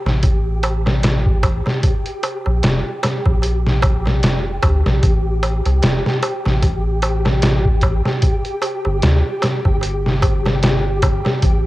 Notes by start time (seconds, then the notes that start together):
Already playing: G4
0.05 A1, snare, darbuka tek
0.23 kick, closed hi-hat, darbuka tek
0.63 closed hi-hat, darbuka tek
0.86 snare, darbuka tek
1.03 snare, closed hi-hat, darbuka tek
1.26 kick
1.43 kick, closed hi-hat, darbuka tek
1.66 snare, darbuka tek
1.83 kick, closed hi-hat, darbuka tek
2.06 closed hi-hat
2.23 closed hi-hat, darbuka tek
2.46 A#1, darbuka tek
2.63 snare, closed hi-hat, darbuka tek
3.03 snare, closed hi-hat, darbuka tek
3.26 A#1, kick, darbuka tek
3.42 closed hi-hat, darbuka tek
3.67 snare
3.82 kick, closed hi-hat, darbuka tek
4.06 snare, darbuka tek
4.23 F1, snare, closed hi-hat, darbuka tek
4.63 D2, kick, closed hi-hat, darbuka tek
4.85 A#1, snare, darbuka tek
5.03 A1, kick, closed hi-hat, darbuka tek
5.43 closed hi-hat, darbuka tek
5.65 C2, closed hi-hat, darbuka tek
5.82 snare, closed hi-hat, darbuka tek
6.06 snare
6.23 closed hi-hat, darbuka tek
6.45 A1, snare, darbuka tek
6.62 kick, closed hi-hat, darbuka tek
7.02 closed hi-hat, darbuka tek
7.25 snare, darbuka tek
7.42 snare, closed hi-hat, darbuka tek
7.65 kick
7.81 kick, closed hi-hat, darbuka tek
8.05 snare, darbuka tek
8.22 kick, closed hi-hat, darbuka tek
8.45 closed hi-hat
8.62 closed hi-hat, darbuka tek
8.85 G1, darbuka tek
9.02 D2, snare, closed hi-hat, darbuka tek
9.42 snare, closed hi-hat, darbuka tek
9.65 G1, kick, darbuka tek
9.81 closed hi-hat, darbuka tek
10.06 snare
10.22 kick, closed hi-hat, darbuka tek
10.45 snare, darbuka tek
10.63 snare, closed hi-hat, darbuka tek
11.02 kick, closed hi-hat, darbuka tek
11.25 snare, darbuka tek
11.42 A1, kick, closed hi-hat, darbuka tek